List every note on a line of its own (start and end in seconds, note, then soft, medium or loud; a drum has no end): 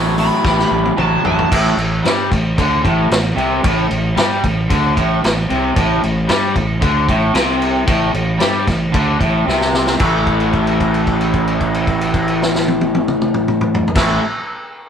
0.00 0.29 A1 loud
0.00 0.15 A2 medium
0.00 0.16 F#3 loud
0.18 0.42 A2 medium
0.18 0.42 F#3 medium
0.18 0.96 B5 loud
0.18 open hi-hat medium
0.44 0.64 A1 medium
0.44 0.92 A2 medium
0.44 0.92 G3 medium
0.44 kick loud
0.44 snare medium
0.59 snare medium
0.71 0.90 A1 medium
0.85 high tom medium
0.97 1.17 A1 medium
0.97 1.21 A2 medium
0.97 1.21 F#3 loud
0.97 1.24 A5 loud
0.97 mid tom medium
1.24 1.43 A1 medium
1.24 1.48 A2 medium
1.24 1.48 F#3 medium
1.24 1.51 A5 loud
1.24 floor tom loud
1.39 floor tom loud
1.51 1.76 A1 loud
1.51 1.76 A2 loud
1.51 kick loud
1.51 crash loud
1.51 crash medium
1.77 2.02 A1 medium
1.77 1.99 A2 medium
1.77 crash medium
2.04 2.29 G2 loud
2.04 2.30 G3 loud
2.04 snare loud
2.04 crash medium
2.31 2.56 A1 medium
2.31 2.52 A2 medium
2.31 kick medium
2.31 crash medium
2.58 2.82 D2 medium
2.58 2.83 D3 loud
2.58 kick loud
2.58 crash medium
2.84 3.09 A1 loud
2.84 3.09 A2 loud
2.84 kick medium
2.84 crash medium
3.11 3.35 A1 medium
3.11 3.32 A2 medium
3.11 snare loud
3.11 crash medium
3.36 3.61 C2 medium
3.36 3.62 C3 loud
3.36 crash medium
3.64 3.88 A1 loud
3.64 3.88 A2 loud
3.64 kick loud
3.64 crash medium
3.89 4.15 A1 medium
3.89 4.10 A2 medium
3.89 crash medium
4.16 4.41 G2 medium
4.16 4.42 G3 loud
4.16 snare loud
4.16 crash medium
4.44 4.68 A1 medium
4.44 4.64 A2 medium
4.44 kick medium
4.44 crash medium
4.70 4.95 D2 medium
4.70 4.95 D3 loud
4.70 kick loud
4.70 crash medium
4.96 5.21 A1 loud
4.96 5.22 A2 loud
4.96 kick medium
4.96 crash medium
5.23 5.48 A1 medium
5.23 5.44 A2 medium
5.23 snare loud
5.23 crash medium
5.50 5.75 C2 medium
5.50 5.75 C3 loud
5.50 crash medium
5.76 6.01 A1 loud
5.76 6.01 A2 loud
5.76 kick loud
5.76 crash medium
6.03 6.28 A1 medium
6.03 6.24 A2 medium
6.03 crash medium
6.29 6.54 G2 loud
6.29 6.54 G3 loud
6.29 snare loud
6.29 crash medium
6.55 6.80 A1 medium
6.55 6.76 A2 medium
6.55 kick medium
6.55 crash medium
6.81 7.07 D2 medium
6.81 7.07 D3 loud
6.81 kick loud
6.81 crash medium
7.09 7.33 A1 loud
7.09 7.34 A2 loud
7.09 kick medium
7.09 crash medium
7.34 7.84 C2 loud
7.34 7.86 C3 loud
7.34 snare loud
7.34 crash medium
7.62 crash medium
7.86 8.13 A1 loud
7.86 8.12 A2 loud
7.86 kick loud
7.86 crash medium
8.13 8.39 A1 medium
8.13 8.35 A2 medium
8.13 crash medium
8.39 8.66 G2 loud
8.39 8.66 G3 loud
8.39 snare loud
8.39 crash medium
8.66 8.92 A1 medium
8.66 8.88 A2 medium
8.66 kick medium
8.66 snare soft
8.66 crash medium
8.93 9.19 D2 medium
8.93 9.19 D3 loud
8.93 kick loud
8.93 crash medium
9.21 9.46 A1 medium
9.21 9.47 A2 loud
9.21 kick medium
9.21 crash medium
9.47 9.97 C2 loud
9.47 9.98 C3 loud
9.47 snare medium
9.61 snare medium
9.74 snare medium
9.87 snare loud
9.99 13.85 A1 loud
9.99 13.88 A2 loud
9.99 13.89 E3 medium
9.99 13.90 A3 loud
9.99 kick loud
9.99 crash loud
10.27 kick medium
10.27 crash soft
10.40 crash soft
10.53 kick medium
10.53 crash soft
10.67 crash soft
10.80 kick medium
10.80 crash medium
10.94 crash medium
11.07 kick medium
11.07 crash medium
11.21 crash medium
11.34 kick medium
11.34 crash soft
11.48 crash medium
11.61 kick medium
11.61 crash medium
11.74 crash medium
11.87 kick medium
11.87 crash soft
12.01 crash medium
12.14 kick medium
12.14 crash medium
12.28 crash medium
12.42 snare loud
12.55 snare medium
12.68 high tom medium
12.81 high tom loud
12.95 high tom loud
13.08 mid tom loud
13.22 mid tom loud
13.34 mid tom loud
13.48 mid tom medium
13.61 mid tom loud
13.75 floor tom loud
13.88 floor tom loud
13.95 14.18 A1 medium
13.95 14.19 A2 loud
13.95 14.20 E3 loud
13.95 14.21 A3 loud
13.95 kick loud
13.95 snare loud
13.95 crash loud